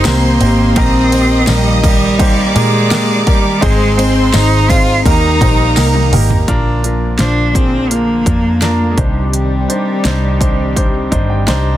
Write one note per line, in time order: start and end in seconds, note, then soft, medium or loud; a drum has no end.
0.00 6.43 D#3 medium
0.00 0.04 C4 medium
0.00 0.72 C4 medium
0.00 0.05 D#4 medium
0.00 0.05 G4 medium
0.00 3.58 G4 medium
0.00 0.06 A#4 medium
0.00 0.41 C5 loud
0.00 0.73 C5 medium
0.00 0.78 D5 medium
0.00 0.73 C6 loud
0.04 0.38 C2 medium
0.04 0.78 A#3 loud
0.04 0.35 C4 medium
0.04 0.35 D#4 medium
0.04 0.35 G4 medium
0.04 0.35 A#4 medium
0.04 snare loud
0.04 ride medium
0.04 tambourine medium
0.40 0.74 G#1 medium
0.40 0.70 C4 medium
0.40 0.70 D#4 medium
0.40 0.71 G4 medium
0.40 0.71 C5 medium
0.40 ride medium
0.76 1.44 A#1 loud
0.76 1.80 A#2 medium
0.76 1.06 A#3 medium
0.76 3.59 A#3 loud
0.76 1.50 C4 loud
0.76 1.06 D#4 medium
0.76 1.07 G4 medium
0.76 1.07 A#4 loud
0.76 2.17 D#5 medium
0.76 2.16 D#6 medium
0.76 kick loud
0.76 ride medium
1.11 1.42 A#3 medium
1.11 1.42 D#4 medium
1.11 1.42 G4 medium
1.11 1.42 C5 medium
1.11 ride medium
1.47 2.51 A#1 medium
1.47 1.84 G3 medium
1.47 1.78 A#3 medium
1.47 1.78 D#4 medium
1.47 1.78 G4 medium
1.47 1.78 A#4 medium
1.47 snare loud
1.47 ride medium
1.47 tambourine medium
1.83 2.57 G3 loud
1.83 2.13 A#3 medium
1.83 2.13 D#4 medium
1.83 2.14 G4 medium
1.83 2.14 A#4 medium
1.83 kick medium
1.83 ride medium
2.18 2.49 A#3 medium
2.18 2.49 D#4 medium
2.18 2.49 G4 medium
2.18 2.50 C5 medium
2.18 3.59 D5 medium
2.18 3.59 D6 loud
2.18 kick medium
2.18 ride medium
2.54 3.23 A#2 medium
2.54 3.29 G#3 loud
2.54 2.85 A#3 medium
2.54 2.85 D#4 medium
2.54 2.85 G4 medium
2.54 2.85 A#4 medium
2.54 ride medium
2.90 3.21 A#3 medium
2.90 3.21 D#4 medium
2.90 3.21 G4 medium
2.90 3.21 A#4 medium
2.90 snare loud
2.90 ride medium
2.90 tambourine medium
3.25 3.64 G3 medium
3.25 3.56 A#3 medium
3.25 3.56 D#4 medium
3.25 3.56 G4 medium
3.25 3.57 A#4 medium
3.25 kick medium
3.25 ride soft
3.61 4.30 G#1 loud
3.61 4.65 G#2 medium
3.61 4.00 G#3 loud
3.61 5.04 G#3 medium
3.61 3.92 C4 loud
3.61 5.04 C4 medium
3.61 3.92 D#4 medium
3.61 3.92 G#4 loud
3.61 5.02 C5 medium
3.61 3.92 C5 loud
3.61 5.02 C6 loud
3.61 kick loud
3.61 ride medium
3.97 4.27 C4 medium
3.97 4.36 C4 loud
3.97 4.28 D#4 medium
3.97 4.28 G#4 medium
3.97 4.28 C5 medium
3.97 ride medium
4.33 5.01 G#1 medium
4.33 4.63 C4 medium
4.33 4.64 D#4 medium
4.33 4.72 D#4 loud
4.33 4.64 G#4 medium
4.33 4.64 C5 medium
4.33 snare loud
4.33 ride medium
4.33 tambourine medium
4.69 4.99 C4 medium
4.69 4.99 D#4 medium
4.69 5.05 F4 loud
4.69 5.00 G#4 medium
4.69 5.00 C5 medium
4.69 kick medium
4.69 snare soft
4.69 ride medium
5.05 5.39 D#2 medium
5.05 6.09 D#3 medium
5.05 6.47 G3 medium
5.05 5.35 A#3 medium
5.05 6.47 A#3 medium
5.05 5.35 D#4 medium
5.05 6.09 D#4 loud
5.05 5.35 G4 medium
5.05 6.45 A#4 medium
5.05 5.36 A#4 loud
5.05 6.46 A#5 loud
5.05 kick medium
5.05 ride medium
5.41 5.74 A#1 medium
5.41 5.71 A#3 medium
5.41 5.71 D#4 medium
5.41 5.71 G4 medium
5.41 5.71 C5 medium
5.41 kick medium
5.41 ride medium
5.76 6.14 C2 medium
5.76 6.06 A#3 medium
5.76 6.07 D#4 medium
5.76 6.07 G4 medium
5.76 6.07 A#4 medium
5.76 snare medium
5.76 ride medium
5.76 tambourine medium
5.95 high tom medium
6.12 6.46 G#1 medium
6.12 6.42 A#3 medium
6.12 6.42 D#4 medium
6.12 6.43 G4 medium
6.12 6.43 A#4 medium
6.12 mid tom medium
6.12 open hi-hat medium
6.12 ride medium
6.30 floor tom medium
6.48 7.16 A#1 medium
6.48 7.51 A#2 medium
6.48 8.96 D3 medium
6.48 8.96 F3 medium
6.48 8.95 A#3 medium
6.48 6.78 D4 loud
6.48 6.78 F4 loud
6.48 6.79 A#4 loud
6.48 kick loud
6.48 closed hi-hat medium
6.83 7.13 D4 medium
6.83 7.14 F4 medium
6.83 7.14 A#4 medium
6.83 closed hi-hat medium
7.18 8.23 A#1 medium
7.18 7.49 D4 medium
7.18 7.56 D4 medium
7.18 7.49 F4 medium
7.18 7.50 C5 medium
7.18 snare loud
7.18 closed hi-hat medium
7.54 7.92 C4 medium
7.54 7.84 D4 medium
7.54 7.85 F4 soft
7.54 7.85 G#4 medium
7.54 kick medium
7.54 closed hi-hat medium
7.90 8.93 A#3 medium
7.90 8.20 D4 medium
7.90 8.21 F4 medium
7.90 8.21 A#4 medium
7.90 closed hi-hat medium
8.26 8.94 F2 medium
8.26 8.56 D4 medium
8.26 8.57 F4 medium
8.26 8.57 A#4 medium
8.26 kick medium
8.26 closed hi-hat medium
8.61 8.92 D4 medium
8.61 8.92 F4 medium
8.61 8.92 A#4 loud
8.61 snare loud
8.61 closed hi-hat medium
8.91 8.99 G#3 medium
8.97 9.65 C2 medium
8.97 10.01 C3 medium
8.97 11.77 D#3 medium
8.97 9.32 G3 medium
8.97 11.77 G3 medium
8.97 11.77 C4 medium
8.97 9.58 D4 medium
8.97 9.58 D#4 soft
8.97 11.77 G4 medium
8.97 9.58 C5 medium
8.97 11.77 D5 medium
8.97 kick medium
8.97 closed hi-hat medium
9.33 11.43 G3 medium
9.33 closed hi-hat medium
9.68 9.99 D4 medium
9.68 9.99 D#4 medium
9.68 9.99 C5 medium
9.68 closed hi-hat medium
10.04 11.08 C2 medium
10.04 10.35 D4 medium
10.04 10.35 D#4 medium
10.04 10.35 C5 medium
10.04 snare loud
10.04 closed hi-hat medium
10.40 10.70 D4 medium
10.40 10.71 D#4 medium
10.40 10.71 C5 medium
10.40 kick medium
10.40 closed hi-hat medium
10.75 11.06 D4 medium
10.75 11.06 D#4 medium
10.75 11.06 C5 medium
10.75 kick medium
10.75 closed hi-hat medium
11.11 11.45 G1 medium
11.11 11.42 D4 medium
11.11 11.42 D#4 medium
11.11 11.42 C5 medium
11.11 11.29 D#5 medium
11.11 kick medium
11.11 closed hi-hat medium
11.30 11.47 G5 medium
11.47 11.77 C2 medium
11.47 11.77 D4 loud
11.47 11.77 D#4 loud
11.47 11.77 C5 loud
11.47 11.77 A#5 medium
11.47 snare loud
11.47 closed hi-hat medium